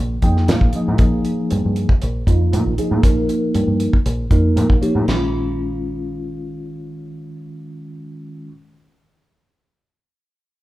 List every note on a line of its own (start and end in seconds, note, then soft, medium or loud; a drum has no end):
0.00 0.17 A#1 medium
0.22 0.50 F2 medium
0.22 0.67 F3 medium
0.22 0.68 A#3 medium
0.22 0.68 D#4 medium
0.22 0.68 G#4 medium
0.22 0.47 G5 medium
0.22 kick medium
0.22 closed hi-hat soft
0.37 snare soft
0.48 0.59 A#2 medium
0.48 0.72 F5 medium
0.48 snare medium
0.48 closed hi-hat medium
0.61 0.71 A#1 medium
0.61 kick medium
0.73 0.97 F3 medium
0.73 0.97 A#3 medium
0.73 0.97 D#4 medium
0.73 0.98 G#4 medium
0.73 0.99 D#5 medium
0.73 muted fingered electric bass stroke soft
0.73 closed hi-hat soft
0.88 0.97 A#2 medium
0.98 1.19 A#1 medium
0.98 1.88 F3 medium
0.98 1.88 A#3 medium
0.98 1.89 D#4 medium
0.98 1.89 G#4 medium
0.98 kick loud
0.98 closed hi-hat medium
1.25 closed hi-hat soft
1.50 1.61 G2 medium
1.50 closed hi-hat medium
1.65 1.84 G2 medium
1.76 closed hi-hat soft
1.89 kick medium
2.02 2.22 A#1 medium
2.02 closed hi-hat medium
2.27 2.55 F2 medium
2.27 2.72 F3 medium
2.27 2.72 A#3 medium
2.27 2.72 D#4 medium
2.27 2.72 F4 medium
2.27 kick medium
2.27 closed hi-hat medium
2.53 2.63 A#2 medium
2.53 closed hi-hat medium
2.66 2.75 A#1 medium
2.78 3.00 F3 medium
2.78 3.01 A#3 medium
2.78 3.00 D#4 medium
2.78 3.01 G#4 medium
2.78 muted fingered electric bass stroke soft
2.78 closed hi-hat soft
2.91 3.01 A#2 medium
3.03 3.23 A#1 medium
3.03 3.93 F3 medium
3.03 3.93 A#3 medium
3.03 3.93 D#4 medium
3.03 3.93 A#4 medium
3.03 kick medium
3.03 closed hi-hat medium
3.29 closed hi-hat soft
3.55 3.65 G2 medium
3.55 closed hi-hat medium
3.67 3.87 G2 medium
3.80 closed hi-hat medium
3.93 kick medium
4.06 4.25 A#1 medium
4.06 closed hi-hat medium
4.30 4.58 F2 medium
4.30 4.75 F3 medium
4.30 4.76 A#3 medium
4.30 4.76 D#4 medium
4.30 4.76 A#4 medium
4.30 kick medium
4.30 closed hi-hat soft
4.56 4.66 A#2 medium
4.56 4.80 F5 medium
4.56 closed hi-hat medium
4.70 4.79 A#1 medium
4.70 kick medium
4.81 5.04 F3 medium
4.81 5.04 A#3 medium
4.81 5.04 D#4 medium
4.81 5.04 G4 medium
4.81 5.05 C#5 medium
4.81 muted fingered electric bass stroke soft
4.81 closed hi-hat soft
4.95 5.04 A#2 medium
5.05 8.50 A#1 medium
5.05 8.48 D#3 medium
5.05 8.51 C#4 medium
5.05 8.52 F4 medium
5.05 snare medium
5.05 splash medium